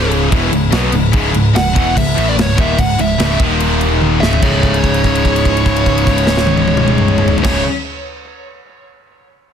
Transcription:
0.00 0.29 C#1 loud
0.00 0.30 C#2 medium
0.00 0.31 G#2 medium
0.00 0.30 C#3 loud
0.00 3.35 C#3 medium
0.00 3.34 G#3 medium
0.00 0.29 C#4 medium
0.00 3.35 E4 medium
0.11 crash medium
0.30 0.51 E1 loud
0.30 0.51 E2 loud
0.30 0.51 B2 loud
0.30 0.51 E3 loud
0.30 3.36 B3 medium
0.30 kick loud
0.30 crash medium
0.52 0.71 C#1 medium
0.52 0.68 C#2 medium
0.52 0.69 G#2 medium
0.52 crash medium
0.71 0.92 B1 loud
0.71 0.92 B2 loud
0.71 0.92 F#3 loud
0.71 0.92 B3 loud
0.71 snare loud
0.71 crash medium
0.92 1.12 C#1 medium
0.92 1.10 C#2 medium
0.92 1.10 G#2 medium
0.92 crash medium
1.12 1.32 C#1 loud
1.12 1.31 C#2 medium
1.12 1.31 G#2 loud
1.12 1.33 C#3 loud
1.12 kick loud
1.12 crash medium
1.32 1.53 C#1 medium
1.32 1.50 C#2 medium
1.32 1.50 G#2 medium
1.32 crash medium
1.53 1.73 C#1 medium
1.53 1.71 C#2 medium
1.53 1.71 G#2 medium
1.53 1.93 F#5 loud
1.53 snare loud
1.53 crash medium
1.73 1.95 E1 loud
1.73 1.94 E2 loud
1.73 1.94 B2 loud
1.73 1.95 E3 loud
1.73 kick loud
1.73 crash medium
1.97 2.16 C#1 medium
1.97 2.13 C#2 medium
1.97 2.13 G#2 medium
1.97 2.28 E5 loud
1.97 kick medium
1.97 crash medium
2.17 2.36 A1 loud
2.17 2.36 A2 medium
2.17 2.37 E3 loud
2.17 2.37 A3 loud
2.17 crash medium
2.29 2.33 D5 medium
2.37 2.56 C#1 medium
2.37 2.53 C#2 medium
2.37 2.53 G#2 medium
2.37 snare loud
2.37 crash medium
2.42 2.58 C#5 loud
2.56 2.77 D#1 medium
2.56 2.77 D#2 loud
2.56 2.77 A#2 loud
2.56 2.77 D#3 loud
2.56 kick loud
2.56 crash medium
2.60 2.80 E5 medium
2.78 2.97 C#1 medium
2.78 2.95 C#2 medium
2.78 2.95 G#2 medium
2.78 3.00 F#5 loud
2.78 kick medium
2.78 crash medium
2.98 3.17 C#1 medium
2.98 3.15 C#2 medium
2.98 3.15 G#2 medium
2.98 3.38 E5 medium
2.98 crash medium
3.19 3.38 C#1 loud
3.19 3.38 C#2 medium
3.19 3.39 G#2 medium
3.19 3.40 C#3 loud
3.19 snare loud
3.19 crash medium
3.39 4.17 D#1 medium
3.39 4.20 D#2 medium
3.39 4.21 A#2 loud
3.39 4.21 D#3 loud
3.39 4.22 D#3 medium
3.39 4.22 A#3 medium
3.39 4.22 F4 medium
3.39 4.22 D#5 medium
3.39 kick loud
3.39 crash medium
3.60 crash medium
3.81 crash medium
4.01 high tom medium
4.20 4.40 C#1 loud
4.20 4.40 C#2 medium
4.20 4.41 G#2 loud
4.20 4.42 C#3 medium
4.20 4.42 C#3 loud
4.20 4.40 G#3 medium
4.20 4.40 C#4 medium
4.20 4.41 E4 medium
4.20 4.78 E5 loud
4.20 snare loud
4.33 floor tom loud
4.41 7.37 C#1 loud
4.41 7.41 C#2 medium
4.41 7.44 G#2 loud
4.41 7.37 C#3 medium
4.41 7.36 G#3 medium
4.41 7.36 C#4 medium
4.41 7.37 E4 medium
4.41 7.37 C#5 medium
4.41 kick loud
4.41 crash loud
4.45 7.46 C#3 loud
4.63 kick medium
4.63 crash soft
4.74 crash soft
4.84 kick medium
4.84 crash soft
4.94 crash soft
5.04 kick medium
5.04 crash medium
5.15 crash medium
5.25 kick medium
5.25 crash soft
5.36 crash medium
5.45 kick medium
5.45 crash soft
5.57 crash soft
5.66 kick medium
5.66 crash soft
5.76 crash soft
5.86 kick medium
5.86 crash medium
5.98 crash medium
6.07 kick medium
6.07 crash medium
6.18 crash medium
6.27 snare loud
6.37 snare medium
6.47 high tom medium
6.58 high tom loud
6.68 high tom loud
6.77 mid tom loud
6.88 mid tom loud
6.98 mid tom loud
7.08 mid tom loud
7.18 mid tom loud
7.28 floor tom loud
7.38 7.62 C#2 medium
7.38 floor tom loud
7.44 7.62 C#1 loud
7.44 7.63 G#2 medium
7.44 7.62 C#3 medium
7.44 7.64 C#3 loud
7.44 7.62 G#3 medium
7.44 7.62 C#4 medium
7.44 7.63 E4 medium
7.44 7.61 C#5 medium
7.44 kick loud
7.44 snare medium
7.44 crash loud

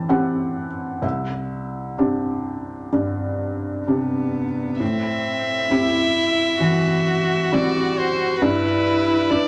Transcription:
0.00 0.65 E3 soft
0.00 0.09 C4 soft
0.00 0.10 E4 soft
0.00 0.10 G4 soft
0.00 1.05 G5 medium
0.00 1.06 A5 medium
0.09 0.99 C4 soft
0.09 0.99 E4 soft
0.09 0.99 G4 soft
0.09 0.99 F#5 soft
1.02 1.95 C2 soft
1.02 4.31 E5 soft
1.98 2.89 C4 soft
1.98 2.89 D4 soft
1.98 2.89 G4 soft
2.93 4.44 G2 soft
3.87 4.77 C3 soft
3.87 4.82 B3 soft
3.87 4.77 D4 soft
3.87 4.77 G4 soft
4.80 5.68 A2 soft
4.80 5.71 C4 medium
4.80 7.55 E5 medium
5.70 6.57 C4 soft
5.70 6.58 E4 soft
5.70 6.60 E4 medium
5.70 6.58 G4 soft
6.60 8.05 E3 soft
6.60 8.43 F#4 medium
7.52 8.38 G3 soft
7.52 8.38 C4 soft
7.52 8.38 E4 soft
7.52 8.00 D5 soft
7.98 8.40 C5 soft
8.41 9.28 G2 medium
8.41 9.48 E4 medium
8.41 9.32 B4 medium
9.31 9.48 D4 soft
9.31 9.48 E4 soft
9.31 9.48 B4 soft
9.31 9.48 D5 medium

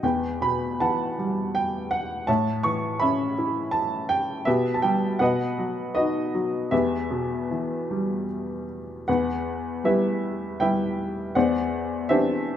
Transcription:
0.03 2.24 E2 soft
0.03 1.15 B4 soft
0.03 0.43 G5 medium
0.41 1.87 B2 soft
0.41 0.81 B5 medium
0.80 2.24 E3 soft
0.80 1.88 F#5 soft
0.80 1.57 A5 medium
1.19 2.25 G3 soft
1.55 1.89 G5 medium
1.91 2.29 F#5 medium
2.27 4.43 A2 medium
2.27 3.34 C#5 soft
2.27 3.00 E5 soft
2.27 2.65 A5 medium
2.63 4.06 E3 soft
2.63 3.02 C#6 medium
3.00 4.43 C#4 soft
3.00 4.06 E5 medium
3.00 3.69 B5 medium
3.38 4.44 E4 soft
3.71 4.10 A5 medium
4.09 4.47 G5 medium
4.45 5.18 B2 medium
4.45 5.17 G4 soft
4.45 5.16 B4 soft
4.45 4.77 E5 medium
4.74 4.82 A5 soft
4.82 5.19 G3 soft
4.82 5.21 G5 medium
5.19 6.68 B2 medium
5.19 5.94 B4 medium
5.19 5.93 D#5 medium
5.19 5.91 F#5 medium
5.58 6.33 F#3 soft
5.95 6.70 D#4 soft
5.95 6.68 F#4 soft
5.95 6.68 B4 soft
5.95 6.74 D#5 medium
6.34 6.71 F#3 soft
6.71 9.04 E2 medium
6.71 8.26 G4 soft
6.71 8.26 B4 soft
6.71 8.25 E5 medium
7.11 8.64 B2 soft
7.51 9.04 E3 soft
7.91 9.05 G3 soft
9.08 11.32 E2 medium
9.08 9.84 B4 soft
9.08 9.87 F#5 medium
9.84 10.57 G3 soft
9.84 10.58 B3 soft
9.84 10.58 E4 soft
9.84 10.94 G4 soft
9.84 10.60 B4 soft
9.84 10.59 E5 medium
10.60 11.33 G3 soft
10.60 11.33 B3 soft
10.60 11.34 E4 soft
10.60 11.32 B4 soft
10.60 11.31 E5 soft
10.60 11.37 G5 medium
11.35 12.57 E2 medium
11.35 12.09 C5 soft
11.35 12.43 D5 soft
11.35 12.06 F#5 medium
12.09 12.57 E3 soft
12.09 12.57 C4 soft
12.09 12.57 D4 soft
12.09 12.57 G4 soft
12.09 12.57 C5 soft
12.09 12.57 E5 medium

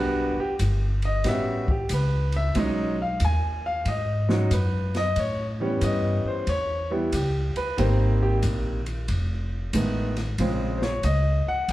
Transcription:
0.00 0.35 B1 medium
0.00 0.33 G3 medium
0.00 0.33 B3 medium
0.00 0.34 D4 medium
0.00 0.34 F#4 medium
0.00 0.38 B4 medium
0.37 0.53 G4 medium
0.37 muted upright bass stroke soft
0.59 1.23 G1 medium
0.59 kick soft
0.59 hi-hat pedal medium
0.59 ride medium
1.02 1.26 D#5 medium
1.02 ride soft
1.24 1.88 A1 medium
1.24 1.64 G3 medium
1.24 1.64 B3 soft
1.24 1.64 C#4 medium
1.24 1.65 F#4 medium
1.24 kick soft
1.24 snare soft
1.24 ride medium
1.28 1.69 E5 medium
1.68 1.91 G4 medium
1.68 kick soft
1.89 2.53 C#2 medium
1.89 kick soft
1.89 hi-hat pedal medium
1.89 ride medium
1.94 2.34 B4 medium
2.32 ride soft
2.36 2.56 E5 medium
2.55 3.19 B1 medium
2.55 2.94 F#3 medium
2.55 2.95 G#3 medium
2.55 2.95 C#4 medium
2.55 2.96 D#4 medium
2.55 2.99 D#5 medium
2.55 kick soft
2.55 ride medium
3.02 3.22 F5 medium
3.20 3.84 D#2 medium
3.20 kick soft
3.20 hi-hat pedal soft
3.20 ride medium
3.25 3.65 G#5 medium
3.66 3.87 F5 medium
3.85 4.49 G#2 medium
3.85 4.29 D#5 medium
3.85 kick soft
3.85 ride medium
4.29 4.49 F#3 medium
4.29 4.49 G#3 medium
4.29 4.50 C#4 medium
4.29 4.50 D#4 medium
4.29 4.52 F#4 medium
4.29 snare soft
4.51 5.14 F#2 medium
4.51 4.94 B4 medium
4.51 kick soft
4.51 hi-hat pedal medium
4.51 ride medium
4.94 5.17 D#5 loud
4.94 snare soft
4.94 ride soft
5.16 5.80 A2 medium
5.16 5.44 C#5 medium
5.16 kick soft
5.16 ride medium
5.60 6.43 E3 medium
5.60 6.43 G3 medium
5.60 6.44 B3 medium
5.60 6.44 C#4 medium
5.81 6.22 G2 medium
5.81 6.25 D#5 medium
5.81 kick soft
5.81 hi-hat pedal soft
5.81 ride medium
6.25 6.48 C5 medium
6.25 muted upright bass stroke soft
6.47 7.10 E2 medium
6.47 6.90 C#5 medium
6.47 kick soft
6.47 ride medium
6.90 7.10 E3 medium
6.90 7.11 G3 medium
6.90 7.11 B3 medium
6.90 7.13 E4 medium
7.12 7.53 C#2 medium
7.12 7.55 G4 medium
7.12 kick soft
7.12 hi-hat pedal medium
7.12 ride medium
7.56 7.78 B4 medium
7.56 muted upright bass stroke soft
7.56 ride soft
7.77 8.41 G#1 medium
7.77 8.77 D#3 medium
7.77 8.78 G3 medium
7.77 8.78 A#3 medium
7.77 8.78 C4 medium
7.77 8.21 C5 medium
7.77 kick soft
7.77 ride medium
8.23 8.35 G4 medium
8.43 9.06 A#1 medium
8.43 kick soft
8.43 hi-hat pedal soft
8.43 ride medium
8.86 ride soft
9.08 9.71 F1 medium
9.08 kick soft
9.08 ride medium
9.73 10.37 A1 medium
9.73 10.12 D#3 medium
9.73 10.13 G#3 medium
9.73 10.13 A3 medium
9.73 10.13 B3 medium
9.73 kick soft
9.73 hi-hat pedal medium
9.73 ride medium
10.16 snare soft
10.16 ride soft
10.38 11.02 A#1 medium
10.38 10.78 C#3 medium
10.38 10.78 F3 medium
10.38 10.79 G#3 medium
10.38 10.79 C4 medium
10.38 kick soft
10.38 ride medium
10.78 10.81 C5 medium
10.78 snare soft
10.83 11.04 C#5 medium
11.03 11.44 C#2 medium
11.03 11.46 D#5 medium
11.03 kick soft
11.03 hi-hat pedal soft
11.03 ride medium
11.46 11.69 F#5 medium
11.46 muted upright bass stroke soft
11.68 11.73 D#2 medium
11.68 kick soft
11.68 ride medium

